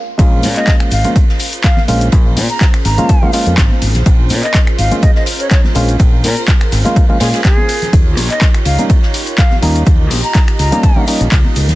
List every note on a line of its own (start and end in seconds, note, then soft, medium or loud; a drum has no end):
0.18 0.45 A#1 loud
0.18 0.91 G#3 loud
0.18 0.91 A#3 medium
0.18 7.89 C#4 medium
0.18 0.92 C#4 medium
0.18 11.75 F4 medium
0.18 0.92 F4 loud
0.18 7.89 G#4 medium
0.18 11.75 A#4 medium
0.18 7.89 C5 medium
0.18 kick loud
0.18 closed hi-hat medium
0.18 ride medium
0.18 shaker soft
0.43 0.54 A#2 medium
0.43 open hi-hat loud
0.43 ride medium
0.43 high conga medium
0.43 shaker medium
0.56 0.73 D#5 loud
0.56 clap soft
0.56 closed hi-hat medium
0.56 shaker soft
0.67 kick loud
0.67 snare loud
0.67 clap loud
0.67 closed hi-hat medium
0.67 ride medium
0.67 shaker soft
0.80 finger snap medium
0.80 closed hi-hat soft
0.91 1.02 G#1 medium
0.91 1.09 F5 loud
0.91 open hi-hat medium
0.91 ride medium
0.91 shaker loud
1.04 1.24 G#3 medium
1.04 1.24 A#3 medium
1.04 1.25 C#4 medium
1.04 1.25 F4 medium
1.04 closed hi-hat medium
1.04 high conga medium
1.04 low conga medium
1.04 shaker medium
1.16 kick loud
1.16 closed hi-hat medium
1.16 ride medium
1.16 shaker soft
1.29 snare soft
1.39 open hi-hat loud
1.39 ride medium
1.39 shaker loud
1.53 closed hi-hat medium
1.53 ride soft
1.53 shaker medium
1.63 1.82 F5 loud
1.63 kick loud
1.63 snare loud
1.63 clap loud
1.63 closed hi-hat medium
1.63 ride medium
1.63 shaker soft
1.77 snare soft
1.77 high conga loud
1.77 low conga medium
1.88 2.08 A#1 medium
1.88 2.09 G#3 medium
1.88 2.09 A#3 medium
1.88 2.09 C#4 medium
1.88 2.09 F4 loud
1.88 open hi-hat medium
1.88 ride medium
1.88 shaker medium
2.01 closed hi-hat medium
2.01 shaker medium
2.12 2.38 A#1 loud
2.12 kick loud
2.12 closed hi-hat medium
2.12 ride medium
2.12 shaker soft
2.37 2.47 A#2 medium
2.37 open hi-hat medium
2.37 open hi-hat loud
2.37 high conga loud
2.37 shaker medium
2.49 2.66 A#5 loud
2.49 closed hi-hat medium
2.49 shaker medium
2.61 kick loud
2.61 snare loud
2.61 clap loud
2.61 closed hi-hat medium
2.61 ride medium
2.61 shaker soft
2.74 finger snap medium
2.74 closed hi-hat soft
2.85 2.95 G#1 medium
2.85 3.33 A#5 loud
2.85 snare soft
2.85 open hi-hat medium
2.85 ride medium
2.85 shaker medium
2.98 3.18 G#3 medium
2.98 3.18 A#3 medium
2.98 3.18 C#4 medium
2.98 3.18 F4 loud
2.98 closed hi-hat medium
2.98 high conga medium
2.98 low conga medium
2.98 shaker medium
3.09 kick loud
3.09 closed hi-hat medium
3.09 ride medium
3.09 shaker soft
3.22 3.31 G#3 loud
3.22 3.31 A#3 medium
3.22 3.31 C#4 medium
3.22 3.31 F4 loud
3.22 low conga loud
3.33 3.54 G#3 medium
3.33 3.54 A#3 medium
3.33 3.54 C#4 medium
3.33 3.54 F4 medium
3.33 open hi-hat loud
3.33 ride medium
3.33 shaker loud
3.46 3.55 F2 medium
3.46 closed hi-hat medium
3.46 shaker medium
3.58 3.68 G#1 medium
3.58 kick loud
3.58 snare loud
3.58 clap loud
3.58 closed hi-hat medium
3.58 ride medium
3.58 shaker soft
3.71 high conga medium
3.81 3.95 G#1 medium
3.81 open hi-hat medium
3.81 ride medium
3.81 shaker loud
3.94 4.04 A#1 medium
3.94 snare soft
3.94 closed hi-hat medium
3.94 low conga medium
3.94 shaker medium
4.06 4.32 A#1 medium
4.06 kick loud
4.06 closed hi-hat medium
4.06 ride loud
4.06 shaker soft
4.30 4.41 A#2 medium
4.30 open hi-hat loud
4.30 ride medium
4.30 high conga loud
4.30 shaker loud
4.43 4.60 D#5 loud
4.43 clap soft
4.43 closed hi-hat medium
4.43 shaker medium
4.54 kick loud
4.54 snare loud
4.54 clap loud
4.54 closed hi-hat medium
4.54 ride medium
4.54 shaker soft
4.67 finger snap medium
4.67 closed hi-hat soft
4.78 4.89 G#1 medium
4.78 4.96 F5 medium
4.78 open hi-hat medium
4.78 ride medium
4.78 shaker medium
4.91 5.11 G#3 medium
4.91 5.12 A#3 medium
4.91 5.12 C#4 medium
4.91 5.12 F4 medium
4.91 closed hi-hat medium
4.91 high conga medium
4.91 low conga medium
4.91 shaker medium
5.03 5.11 D#5 medium
5.03 kick loud
5.03 closed hi-hat medium
5.03 ride medium
5.03 shaker soft
5.15 5.23 D#5 medium
5.15 snare soft
5.26 open hi-hat loud
5.26 ride medium
5.26 shaker medium
5.40 5.47 C#5 medium
5.40 closed hi-hat medium
5.40 ride soft
5.40 shaker medium
5.51 5.60 C#5 medium
5.51 kick loud
5.51 snare loud
5.51 clap loud
5.51 closed hi-hat medium
5.51 ride medium
5.51 shaker soft
5.64 snare soft
5.64 high conga medium
5.64 low conga medium
5.75 5.95 A#1 medium
5.75 5.96 G#3 medium
5.75 5.96 A#3 medium
5.75 5.96 C#4 medium
5.75 5.96 F4 loud
5.75 open hi-hat loud
5.75 ride medium
5.75 shaker loud
5.88 closed hi-hat medium
5.88 shaker medium
5.99 6.25 A#1 loud
5.99 kick loud
5.99 closed hi-hat medium
5.99 ride medium
5.99 shaker soft
6.24 6.34 A#2 medium
6.24 6.41 A#4 medium
6.24 open hi-hat loud
6.24 open hi-hat medium
6.24 high conga medium
6.24 shaker loud
6.37 closed hi-hat medium
6.37 shaker medium
6.48 kick loud
6.48 snare loud
6.48 clap loud
6.48 closed hi-hat medium
6.48 ride medium
6.48 shaker soft
6.61 finger snap medium
6.61 closed hi-hat soft
6.72 6.83 G#1 medium
6.72 snare medium
6.72 open hi-hat medium
6.72 ride medium
6.72 shaker loud
6.85 7.05 G#3 loud
6.85 7.05 A#3 medium
6.85 7.05 C#4 medium
6.85 7.05 F4 loud
6.85 closed hi-hat soft
6.85 high conga medium
6.85 low conga medium
6.85 shaker medium
6.96 kick loud
6.96 closed hi-hat medium
6.96 ride medium
6.96 shaker soft
7.09 7.18 G#3 medium
7.09 7.18 A#3 medium
7.09 7.18 C#4 medium
7.09 7.18 F4 loud
7.09 low conga medium
7.20 7.31 A#2 loud
7.20 7.41 G#3 medium
7.20 7.41 A#3 medium
7.20 7.41 C#4 medium
7.20 7.41 F4 medium
7.20 7.29 G#4 medium
7.20 snare loud
7.20 open hi-hat loud
7.20 ride medium
7.20 shaker medium
7.33 7.41 G#4 medium
7.33 snare loud
7.33 closed hi-hat medium
7.33 ride medium
7.33 shaker medium
7.45 7.93 G#4 loud
7.45 kick loud
7.45 snare loud
7.45 clap loud
7.45 closed hi-hat medium
7.45 ride medium
7.45 shaker soft
7.57 high conga medium
7.68 open hi-hat loud
7.68 ride medium
7.68 shaker medium
7.82 snare soft
7.82 closed hi-hat soft
7.82 low conga medium
7.82 shaker medium
7.93 8.17 D#2 medium
7.93 11.75 D#4 medium
7.93 11.75 G4 medium
7.93 9.85 C#5 medium
7.93 kick loud
7.93 closed hi-hat medium
7.93 ride medium
7.93 shaker soft
8.17 8.28 A#1 medium
8.17 open hi-hat loud
8.17 ride medium
8.17 high conga loud
8.17 shaker medium
8.30 8.47 D#5 loud
8.30 clap soft
8.30 closed hi-hat medium
8.30 shaker medium
8.41 kick loud
8.41 snare loud
8.41 clap loud
8.41 closed hi-hat medium
8.41 ride medium
8.41 shaker soft
8.55 finger snap medium
8.55 closed hi-hat soft
8.65 8.76 C#2 medium
8.65 8.83 F5 medium
8.65 open hi-hat medium
8.65 ride medium
8.65 shaker medium
8.78 8.98 G3 medium
8.78 8.99 A#3 medium
8.78 8.99 C#4 medium
8.78 8.99 D#4 medium
8.78 closed hi-hat medium
8.78 high conga medium
8.78 low conga medium
8.78 shaker medium
8.90 kick loud
8.90 closed hi-hat medium
8.90 ride medium
8.90 shaker soft
9.03 snare medium
9.14 open hi-hat loud
9.14 ride medium
9.14 shaker medium
9.26 closed hi-hat medium
9.26 ride soft
9.26 shaker medium
9.38 9.56 F5 loud
9.38 kick loud
9.38 snare loud
9.38 clap loud
9.38 closed hi-hat medium
9.38 ride medium
9.38 shaker soft
9.51 snare medium
9.51 high conga medium
9.51 low conga medium
9.62 9.82 D#2 medium
9.62 9.83 G3 medium
9.62 9.83 A#3 medium
9.62 9.83 C#4 medium
9.62 9.83 D#4 loud
9.62 open hi-hat medium
9.62 ride medium
9.62 shaker medium
9.75 closed hi-hat medium
9.75 shaker soft
9.86 10.11 D#2 loud
9.86 11.75 D#5 medium
9.86 kick loud
9.86 closed hi-hat medium
9.86 ride medium
9.86 shaker soft
10.10 10.21 A#1 medium
10.10 open hi-hat medium
10.10 open hi-hat loud
10.10 high conga medium
10.10 shaker medium
10.24 10.41 A#5 loud
10.24 closed hi-hat medium
10.24 shaker medium
10.34 kick loud
10.34 snare loud
10.34 clap loud
10.34 closed hi-hat medium
10.34 ride medium
10.34 shaker soft
10.48 finger snap medium
10.48 closed hi-hat soft
10.59 10.70 C#2 medium
10.59 11.08 A#5 loud
10.59 snare soft
10.59 open hi-hat medium
10.59 ride medium
10.59 shaker medium
10.72 10.92 G3 loud
10.72 10.92 A#3 medium
10.72 10.92 C#4 medium
10.72 10.92 D#4 loud
10.72 closed hi-hat medium
10.72 high conga medium
10.72 low conga medium
10.72 shaker medium
10.83 kick loud
10.83 closed hi-hat medium
10.83 ride medium
10.83 shaker soft
10.96 11.05 G3 loud
10.96 11.05 A#3 medium
10.96 11.05 C#4 medium
10.96 11.05 D#4 loud
10.96 low conga medium
11.07 11.28 G3 medium
11.07 11.28 A#3 medium
11.07 11.28 C#4 medium
11.07 11.28 D#4 medium
11.07 open hi-hat loud
11.07 ride medium
11.07 shaker medium
11.20 11.30 A#1 medium
11.20 closed hi-hat medium
11.20 shaker soft
11.31 11.42 C#2 medium
11.31 kick loud
11.31 snare loud
11.31 clap loud
11.31 closed hi-hat medium
11.31 ride medium
11.31 shaker soft
11.45 high conga medium
11.56 11.69 C#2 medium
11.56 open hi-hat medium
11.56 ride medium
11.56 shaker medium
11.69 11.75 D#2 medium
11.69 snare soft
11.69 closed hi-hat medium
11.69 low conga medium
11.69 shaker soft